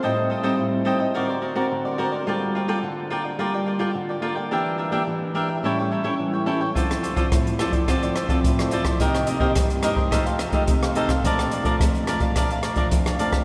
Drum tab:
HH |----------------|----------------|----------------|xxxxxxxxxxxxxxxx|
SD |----------------|----------------|----------------|-r--r-r-r-r--r-r|
BD |----------------|----------------|----------------|o--oo--oo--oo--o|

HH |xxx-xxx-xxxxxxxx|xxxxxxxxxxxxxxxx|
SD |-r--r-r-r-r--r-r|-r--r-r-r-r--r-r|
BD |o--oo--oo--oo--o|o--oo--oo--oo--o|